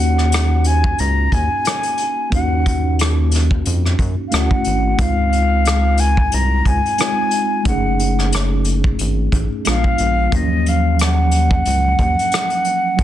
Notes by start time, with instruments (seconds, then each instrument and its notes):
Already playing: analog synth bass D#2, tine electric piano A#3 C#4 D#4 F#4, flute F#5
0.18 cross-stick
0.32 cross-stick, closed hi-hat
0.64 flute G#5, closed hi-hat
0.84 kick
0.98 analog synth bass C#2, flute A#5, closed hi-hat
1.32 analog synth bass D#2, flute G#5, kick, closed hi-hat
1.65 cross-stick, closed hi-hat
1.83 closed hi-hat
1.98 closed hi-hat
2.30 analog synth bass D#2, tine electric piano A#3 C#4 D#4, flute F#5, kick, closed hi-hat
2.36 tine electric piano F#4
2.66 kick, closed hi-hat
2.99 cross-stick, closed hi-hat
3.31 cross-stick, closed hi-hat
3.51 kick
3.66 analog synth bass F2, closed hi-hat
3.86 cross-stick
3.99 analog synth bass F#2, kick, closed hi-hat
4.28 tine electric piano A3, flute F5, closed hi-hat
4.32 analog synth bass D2, tine electric piano C#4 E4 F#4, flute F#5, cross-stick
4.51 kick
4.64 analog synth bass G#1, closed hi-hat
4.96 analog synth bass C#2, tine electric piano G#3 C4, kick, closed hi-hat
5.00 tine electric piano D#4 F4, flute F5
5.33 closed hi-hat
5.65 cross-stick, closed hi-hat
5.97 flute G#5, closed hi-hat
6.17 kick
6.32 analog synth bass C2, flute A#5, closed hi-hat
6.65 analog synth bass C#2, flute G#5, kick, closed hi-hat
6.86 closed hi-hat
6.98 tine electric piano G#3 C4 D#4 F4, cross-stick, closed hi-hat
7.31 closed hi-hat
7.63 analog synth bass F#1, tine electric piano A3 C#4, flute F#5, kick, closed hi-hat
7.68 tine electric piano D#4 G#4
8.00 closed hi-hat
8.19 cross-stick
8.32 cross-stick, closed hi-hat
8.64 closed hi-hat
8.84 kick
8.99 analog synth bass G#1, closed hi-hat
9.32 analog synth bass A1, kick, closed hi-hat
9.65 analog synth bass A#1, tine electric piano G#3 B3 D4 F4, cross-stick, closed hi-hat
9.69 flute F5
9.84 kick
9.98 analog synth bass A#1, closed hi-hat
10.30 analog synth bass D#2, tine electric piano F#3 A#3, kick, closed hi-hat
10.34 tine electric piano C#4 E4, flute D#5
10.42 tine electric piano F3
10.66 flute F5, closed hi-hat
10.99 flute F#5, cross-stick, closed hi-hat
11.31 closed hi-hat
11.51 kick
11.65 analog synth bass C#2, closed hi-hat
11.99 analog synth bass D#2, kick, closed hi-hat
12.19 closed hi-hat
12.32 cross-stick, closed hi-hat
12.50 closed hi-hat
12.64 closed hi-hat
12.97 analog synth bass D#2, tine electric piano F#3 A#3, kick, closed hi-hat